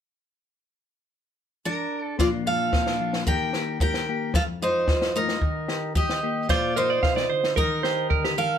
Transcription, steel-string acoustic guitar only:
1.65 2.16 D4 medium
1.65 2.01 A#4 medium
2.01 2.15 A4 medium
2.20 2.27 F4 medium
2.20 2.27 D5 medium
2.47 3.23 A4 medium
2.47 3.23 F5 medium
3.27 3.77 A#4 medium
3.27 3.80 G5 medium
3.81 4.31 A#4 medium
3.81 4.35 G5 medium
4.35 4.42 A4 medium
4.35 4.43 F5 medium
4.62 5.12 D#4 medium
4.62 5.18 C5 medium
5.16 5.92 D#4 medium
5.16 5.95 A#4 medium
5.95 6.45 G4 medium
5.95 6.49 D#5 medium
6.49 6.74 F4 medium
6.49 6.77 D5 medium
6.77 7.53 D#4 medium
6.77 7.54 C5 medium
7.57 8.34 D#4 medium
7.57 8.34 A#4 medium
8.38 8.58 A4 medium
8.38 8.58 F5 medium

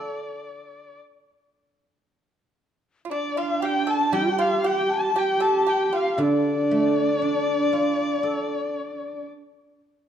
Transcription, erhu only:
0.00 0.98 D5 medium
3.12 3.39 D5 medium
3.38 3.67 F5 medium
3.65 3.92 G5 medium
3.90 4.16 A5 medium
4.14 4.42 G5 medium
4.41 4.68 F5 medium
4.66 4.94 G5 medium
4.93 5.20 A5 medium
5.19 5.44 G5 medium
5.42 5.71 A5 medium
5.69 5.97 G5 medium
5.96 6.23 F5 medium
6.21 9.26 D5 medium

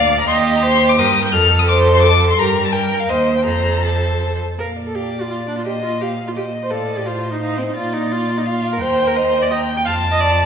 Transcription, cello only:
0.00 0.27 D2 medium
0.28 0.99 D#2 medium
0.97 1.35 G2 medium
1.33 2.37 F2 medium
2.38 3.05 G2 medium
3.09 3.48 D#2 medium
3.46 4.40 F2 medium
4.58 6.72 A#2 soft
6.70 7.75 A2 soft
7.76 8.82 A#2 medium
8.80 9.88 D#2 medium
9.86 10.46 F2 medium

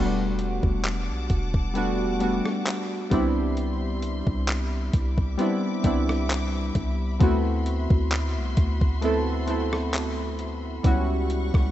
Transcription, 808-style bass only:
0.00 0.61 E1 loud
0.63 1.11 E1 loud
1.09 1.29 B1 medium
1.30 2.41 E1 loud
3.12 4.23 C2 loud
4.27 4.91 C2 loud
4.94 5.37 C2 loud
5.84 6.72 C2 loud
6.75 7.19 C2 loud
7.21 7.88 D2 loud
7.90 8.38 D2 loud
8.37 8.56 C2 loud
8.57 10.80 D2 loud
10.85 11.52 C#2 loud
11.54 11.71 C#2 loud

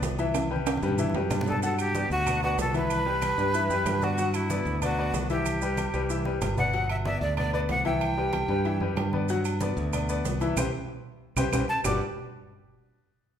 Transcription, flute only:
1.48 1.62 A4 medium
1.64 1.78 A4 medium
1.80 2.09 G4 loud
2.12 2.41 F#4 loud
2.44 2.58 F#4 loud
2.61 2.74 A4 loud
2.77 4.05 B4 loud
4.04 4.37 F#4 medium
4.35 4.82 E4 medium
4.83 5.27 F#4 loud
5.31 6.38 G4 medium
6.59 6.88 F#5 medium
6.90 6.96 E5 medium
7.06 7.21 E5 loud
7.22 7.36 D5 medium
7.38 7.52 D5 loud
7.54 7.60 D5 medium
7.70 7.84 F#5 loud
7.86 9.10 G5 medium
11.69 11.84 A5 medium
11.85 12.00 D6 medium

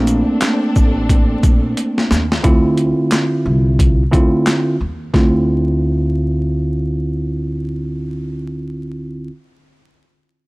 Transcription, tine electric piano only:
0.00 2.25 A3 medium
0.00 2.25 A#3 loud
0.00 2.26 C4 medium
0.00 2.26 D4 medium
2.43 4.02 D3 medium
2.43 4.02 C4 medium
2.43 4.02 E4 medium
2.43 4.03 F4 medium
4.12 4.75 D3 loud
4.12 4.76 C4 medium
4.12 4.76 E4 medium
4.12 4.76 F4 loud
5.13 9.28 D3 medium
5.13 9.29 C4 medium
5.13 9.29 E4 medium
5.13 9.29 F4 medium

